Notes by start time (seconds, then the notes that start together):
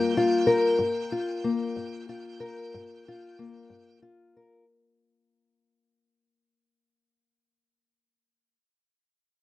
Already playing: G2 G3 A#3 F4 A#4 G5
0.17 F4
0.47 A#4
0.79 G2
1.12 F4
1.44 A#3
1.76 G2
2.09 F4
2.40 A#4
2.74 G2
3.08 F4
3.39 A#3
3.70 G2
4.02 F4
4.37 A#4